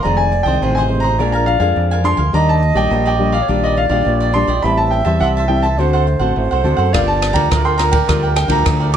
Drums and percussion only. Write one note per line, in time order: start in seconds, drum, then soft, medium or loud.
6.94 kick medium
6.94 cross-stick medium
6.94 ride medium
7.22 cross-stick medium
7.22 ride soft
7.35 kick medium
7.35 ride soft
7.51 kick medium
7.51 cross-stick medium
7.51 ride soft
7.79 cross-stick medium
7.79 ride soft
7.92 kick medium
7.92 ride medium
8.09 kick medium
8.09 cross-stick medium
8.09 ride soft
8.36 cross-stick medium
8.36 ride soft
8.49 kick medium
8.49 ride soft
8.66 kick medium
8.66 cross-stick medium
8.66 ride soft
8.94 ride soft